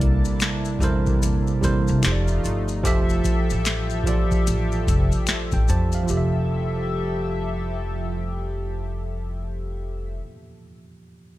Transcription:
0.00 0.18 C2 loud
0.00 0.72 C3 loud
0.00 2.00 C3 medium
0.00 0.73 G3 loud
0.00 2.00 A#3 medium
0.00 1.98 D4 medium
0.00 0.73 E4 loud
0.00 2.00 E4 medium
0.00 0.73 A4 loud
0.00 0.74 A#4 loud
0.00 0.74 D5 loud
0.00 1.98 A5 medium
0.00 kick medium
0.00 closed hi-hat medium
0.25 muted upright bass stroke soft
0.25 maracas medium
0.40 finger snap medium
0.40 snare loud
0.40 closed hi-hat medium
0.40 maracas medium
0.65 maracas soft
0.79 1.38 E2 medium
0.79 1.56 C3 medium
0.79 1.57 G3 medium
0.79 1.57 E4 medium
0.79 1.57 A4 medium
0.79 kick medium
0.79 closed hi-hat medium
0.79 maracas soft
0.83 1.58 A#4 medium
0.83 1.58 C5 loud
1.06 kick loud
1.06 maracas soft
1.22 closed hi-hat medium
1.22 maracas medium
1.47 maracas soft
1.61 1.85 E2 medium
1.61 2.02 C3 medium
1.61 2.02 G3 medium
1.61 2.03 E4 medium
1.61 2.03 A4 medium
1.61 2.03 A#4 medium
1.61 2.04 C5 loud
1.61 kick medium
1.61 closed hi-hat medium
1.61 maracas medium
1.88 2.02 C3 medium
1.88 maracas soft
2.02 2.39 F1 medium
2.02 2.78 F3 medium
2.02 2.83 A3 medium
2.02 2.78 D#4 medium
2.02 2.83 D#4 medium
2.02 2.83 F4 medium
2.02 2.79 G4 medium
2.02 2.79 A4 medium
2.02 2.12 C5 medium
2.02 finger snap medium
2.02 snare medium
2.02 closed hi-hat medium
2.02 maracas medium
2.12 2.83 D5 loud
2.28 maracas soft
2.44 2.85 G1 medium
2.44 closed hi-hat medium
2.44 maracas soft
2.68 maracas soft
2.83 3.20 F1 loud
2.83 3.97 F3 loud
2.83 6.05 F3 medium
2.83 3.97 F4 medium
2.83 6.05 G4 medium
2.83 3.98 G4 medium
2.83 6.05 A4 medium
2.83 3.98 A4 medium
2.83 6.05 E5 medium
2.83 3.99 E5 loud
2.83 kick loud
2.83 closed hi-hat medium
2.83 maracas medium
3.09 maracas soft
3.24 kick medium
3.24 closed hi-hat medium
3.24 maracas soft
3.50 4.22 A1 medium
3.50 maracas medium
3.65 finger snap medium
3.65 snare loud
3.65 closed hi-hat medium
3.65 maracas medium
3.90 maracas soft
4.04 4.81 F3 medium
4.04 4.81 F4 medium
4.04 4.82 G4 medium
4.04 4.82 A4 medium
4.04 kick medium
4.04 closed hi-hat medium
4.04 maracas soft
4.08 4.82 D5 medium
4.31 kick medium
4.31 maracas soft
4.47 4.82 A1 medium
4.47 closed hi-hat medium
4.47 maracas medium
4.72 maracas soft
4.87 5.09 F1 medium
4.87 kick medium
4.87 closed hi-hat medium
4.87 maracas soft
5.12 maracas soft
5.27 finger snap medium
5.27 muted upright bass stroke soft
5.27 snare medium
5.27 closed hi-hat medium
5.27 maracas medium
5.52 5.66 A1 medium
5.52 5.67 G5 medium
5.52 kick medium
5.52 maracas soft
5.68 6.04 F2 medium
5.68 5.93 C5 medium
5.68 5.92 A5 medium
5.68 closed hi-hat medium
5.68 maracas soft
5.92 6.12 A4 soft
5.92 6.32 F5 medium
5.92 maracas soft
6.03 10.12 F3 medium
6.03 10.16 F4 medium
6.08 10.19 F1 medium
6.08 10.09 F3 medium
6.08 10.09 G4 medium
6.08 10.19 G4 medium
6.08 10.09 A4 medium
6.08 10.09 E5 medium
6.08 maracas medium
6.13 10.23 A4 medium
6.13 10.26 E5 medium

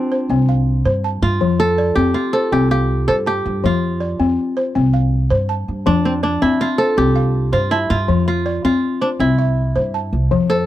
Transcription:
0.00 0.11 C4 medium
0.00 1.54 C4 medium
0.00 1.06 D4 medium
0.00 0.71 F4 medium
0.00 0.22 G4 medium
0.00 0.11 D5 medium
0.12 0.48 C5 medium
0.29 0.81 C2 medium
0.29 0.67 C4 medium
0.49 1.04 F5 medium
0.85 1.19 G2 medium
0.85 1.23 C5 medium
1.04 1.60 A5 medium
1.22 1.39 G2 medium
1.22 2.14 F4 medium
1.41 1.93 F2 medium
1.41 1.78 F3 medium
1.60 2.33 A4 medium
1.78 2.34 D5 medium
1.96 2.14 F2 medium
1.96 2.34 C4 medium
1.96 2.52 G4 medium
2.14 3.65 F4 medium
2.33 3.07 A4 medium
2.33 2.71 C5 medium
2.52 3.04 C2 medium
2.52 2.89 C4 medium
2.52 2.71 G4 medium
2.71 3.27 G4 medium
2.71 3.27 F5 medium
3.08 3.42 G2 medium
3.08 3.14 A4 medium
3.08 3.45 C5 medium
3.26 4.68 G4 medium
3.26 3.82 A5 medium
3.46 3.62 G2 medium
3.64 4.16 F2 medium
3.64 4.01 F3 medium
3.64 5.17 F4 medium
4.00 4.56 D5 medium
4.19 4.37 F2 medium
4.19 4.57 C4 medium
4.57 4.94 C5 medium
4.75 5.27 C2 loud
4.75 5.12 C4 medium
4.94 5.49 F5 medium
5.30 5.65 G2 medium
5.30 5.68 C5 medium
5.49 6.05 A5 medium
5.68 5.85 G2 medium
5.86 6.38 F2 loud
5.86 6.23 F3 medium
5.86 6.23 D4 medium
6.05 6.11 C4 medium
6.23 7.91 D4 medium
6.23 6.79 D5 medium
6.42 6.59 F2 medium
6.42 6.79 C4 medium
6.42 6.67 E4 medium
6.61 7.52 F4 medium
6.78 8.10 A4 medium
6.78 7.16 C5 medium
6.97 7.49 C2 medium
6.97 7.34 C4 medium
6.97 8.39 G4 medium
7.16 7.71 F5 medium
7.53 7.87 G2 medium
7.53 7.77 F4 medium
7.53 7.90 C5 medium
7.71 7.96 E4 medium
7.71 8.27 A5 medium
7.90 8.07 G2 medium
7.90 8.27 F4 medium
8.08 8.60 F2 medium
8.08 8.46 F3 medium
8.28 8.64 F4 medium
8.46 9.01 D5 medium
8.64 8.81 F2 medium
8.64 9.02 C4 medium
8.64 9.26 F4 medium
9.01 9.08 D4 medium
9.01 9.38 C5 medium
9.19 9.71 C2 medium
9.19 9.57 C4 medium
9.19 10.66 E4 medium
9.39 9.94 E5 medium
9.76 10.10 G2 medium
9.76 10.13 C5 medium
9.94 10.50 A5 medium
10.13 10.30 C2 medium
10.31 10.65 F2 medium
10.31 10.66 F3 medium
10.50 10.66 A4 medium
10.50 10.66 C5 medium

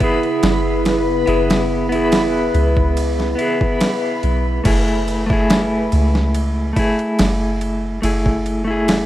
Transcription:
0.00 4.61 C#3 medium
0.00 1.21 B3 medium
0.00 4.61 B3 medium
0.00 4.61 E4 medium
0.00 1.23 E4 medium
0.00 4.61 G#4 medium
0.00 1.24 G#4 medium
0.00 4.67 B4 medium
0.00 kick medium
0.00 ride medium
0.23 ride soft
0.43 1.24 F#1 loud
0.43 snare loud
0.43 ride medium
0.85 snare medium
0.85 ride medium
1.26 2.51 F#1 medium
1.26 1.86 B3 medium
1.26 1.87 E4 medium
1.26 1.87 G#4 medium
1.26 ride medium
1.50 snare loud
1.50 ride medium
1.89 3.32 B3 medium
1.89 3.34 E4 medium
1.89 ride medium
1.95 3.35 G#4 loud
2.12 snare loud
2.12 ride medium
2.54 3.35 C#2 loud
2.54 ride medium
2.77 kick medium
2.97 ride medium
3.20 snare medium
3.35 4.59 B3 medium
3.35 4.60 E4 medium
3.35 ride medium
3.41 4.62 G#4 medium
3.61 kick medium
3.81 snare loud
3.81 ride medium
4.23 4.61 B1 medium
4.23 ride medium
4.64 5.88 F#1 loud
4.64 5.24 A3 medium
4.64 5.25 E4 medium
4.64 5.25 G#4 medium
4.64 kick loud
4.64 crash loud
4.64 ride medium
4.88 ride soft
5.08 ride medium
5.26 6.70 A3 medium
5.26 6.72 E4 medium
5.26 kick loud
5.33 6.73 G#4 medium
5.50 snare loud
5.50 ride medium
5.92 6.73 C#2 loud
5.92 ride medium
6.15 snare medium
6.34 ride medium
6.73 7.97 A3 medium
6.73 7.98 E4 medium
6.73 kick medium
6.73 ride medium
6.79 8.00 G#4 medium
6.99 ride soft
7.19 8.00 F#1 loud
7.19 snare loud
7.19 ride medium
7.61 ride medium
8.02 9.06 F#1 loud
8.02 8.62 A3 medium
8.02 8.63 E4 medium
8.02 8.63 G#4 medium
8.02 ride loud
8.26 kick medium
8.46 ride medium
8.64 9.06 A3 medium
8.64 9.06 E4 medium
8.71 9.06 G#4 loud
8.88 snare loud
8.88 ride medium

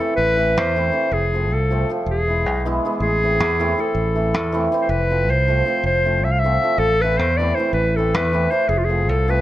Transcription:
0.00 0.35 E3 medium
0.00 0.10 A3 medium
0.00 0.10 C4 medium
0.00 0.11 E4 medium
0.00 0.16 A4 medium
0.16 0.58 A1 medium
0.16 0.61 B4 loud
0.37 0.75 E3 medium
0.37 0.50 A3 soft
0.37 0.50 C4 soft
0.37 0.50 E4 medium
0.58 0.90 E2 medium
0.58 1.15 C5 medium
0.76 0.90 E3 medium
0.76 0.87 A3 medium
0.76 0.87 C4 medium
0.76 0.88 E4 medium
0.91 1.16 E3 medium
0.91 1.04 A3 medium
0.91 1.04 C4 medium
0.91 1.04 E4 medium
1.11 1.50 F1 medium
1.11 1.56 G#4 medium
1.33 1.69 F3 medium
1.33 1.45 A3 medium
1.33 1.45 C4 soft
1.33 1.45 F4 medium
1.50 1.83 C2 loud
1.50 1.90 A4 medium
1.71 1.88 F3 medium
1.71 1.82 A3 medium
1.71 1.82 C4 medium
1.71 1.82 F4 medium
1.89 2.11 F3 medium
1.89 2.00 A3 medium
1.89 2.00 C4 medium
1.89 2.00 F4 medium
2.06 2.46 E1 medium
2.06 2.64 G#4 medium
2.28 2.64 E3 medium
2.28 2.65 G#3 soft
2.28 2.40 B3 soft
2.28 2.40 E4 medium
2.46 2.79 B1 loud
2.65 2.84 E3 medium
2.65 2.84 G#3 medium
2.65 2.77 B3 medium
2.65 2.77 E4 medium
2.85 3.05 E3 medium
2.85 3.05 G#3 medium
2.85 2.95 B3 medium
2.85 2.95 E4 medium
3.00 3.40 A1 medium
3.00 3.82 G#4 loud
3.23 3.59 E3 medium
3.23 3.34 A3 soft
3.23 3.34 C4 medium
3.23 3.35 E4 medium
3.40 3.73 E2 loud
3.60 3.77 E3 medium
3.60 3.71 A3 medium
3.60 3.71 C4 medium
3.60 3.71 E4 loud
3.78 4.14 E3 medium
3.78 3.89 A3 medium
3.78 3.88 C4 soft
3.78 3.89 E4 medium
3.78 4.74 A4 medium
3.95 4.34 A1 medium
4.15 4.51 E3 medium
4.15 4.27 A3 medium
4.15 4.27 C4 soft
4.15 4.28 E4 medium
4.34 4.67 E2 loud
4.52 4.71 E3 medium
4.52 4.65 A3 medium
4.52 4.65 C4 medium
4.52 4.65 E4 medium
4.72 4.94 E3 medium
4.72 4.82 A3 medium
4.72 4.83 C4 medium
4.72 4.84 E4 medium
4.82 4.92 C5 medium
4.89 5.29 F1 loud
4.89 5.32 B4 medium
5.10 5.47 F3 medium
5.10 5.22 A3 soft
5.10 5.22 C4 medium
5.10 5.22 F4 medium
5.29 5.62 C2 loud
5.29 5.85 C5 loud
5.48 5.64 F3 medium
5.48 5.59 A3 medium
5.48 5.60 C4 medium
5.48 5.60 F4 medium
5.66 6.03 F3 medium
5.66 5.77 A3 medium
5.66 5.77 C4 medium
5.66 5.78 F4 medium
5.84 6.25 F1 medium
5.84 6.26 C5 medium
6.05 6.43 F3 medium
6.05 6.17 A3 medium
6.05 6.17 C4 soft
6.05 6.17 F4 medium
6.24 6.57 C2 medium
6.24 6.33 E5 medium
6.32 6.41 F5 medium
6.39 6.80 E5 loud
6.44 6.62 F3 medium
6.44 6.55 A3 medium
6.44 6.56 C4 medium
6.44 6.55 F4 medium
6.63 6.83 F3 medium
6.63 6.73 A3 medium
6.63 6.73 C4 medium
6.63 6.74 F4 medium
6.78 7.19 A1 medium
6.78 7.03 A4 loud
7.01 7.38 E3 medium
7.01 7.13 A3 medium
7.01 7.13 C4 medium
7.01 7.14 E4 medium
7.01 7.20 B4 medium
7.19 7.52 E2 medium
7.19 7.39 C5 medium
7.37 7.56 E3 medium
7.37 7.50 A3 medium
7.37 7.50 C4 medium
7.37 7.50 E4 medium
7.37 7.56 D5 medium
7.55 7.97 E3 medium
7.55 7.72 C5 medium
7.59 7.68 A3 medium
7.59 7.68 C4 medium
7.59 7.68 E4 medium
7.73 8.14 A1 medium
7.73 7.97 B4 medium
7.96 8.31 E3 medium
7.96 8.08 A3 medium
7.96 8.08 C4 medium
7.96 8.08 E4 medium
7.96 8.17 A4 medium
8.14 8.47 E2 medium
8.14 8.53 B4 medium
8.33 8.50 E3 medium
8.33 8.44 A3 medium
8.33 8.44 C4 medium
8.33 8.44 E4 medium
8.51 8.73 E3 medium
8.51 8.62 A3 medium
8.51 8.62 C4 medium
8.51 8.62 E4 medium
8.51 8.71 C5 medium
8.69 9.09 F1 loud
8.69 8.80 G#4 medium
8.78 8.86 F4 medium
8.85 9.11 G#4 medium
8.89 9.27 F3 medium
8.89 9.00 A3 medium
8.89 9.01 C4 medium
8.89 9.01 F4 medium
9.09 9.41 C2 loud
9.09 9.31 A4 medium
9.28 9.41 F3 medium
9.28 9.39 A3 medium
9.28 9.39 C4 medium
9.28 9.39 F4 medium
9.28 9.41 B4 medium

